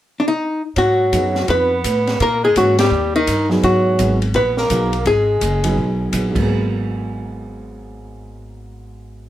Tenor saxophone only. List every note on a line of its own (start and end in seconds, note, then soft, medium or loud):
0.76 1.44 F#3 medium
1.49 2.16 B3 medium
2.20 2.41 A#3 medium
2.43 2.55 G#3 medium
2.57 2.78 F#3 medium
2.79 3.12 G3 medium
3.16 3.48 D#3 medium
3.63 4.18 F#3 medium
4.35 4.59 B3 medium
4.57 5.06 A#3 medium
5.06 6.09 G#3 medium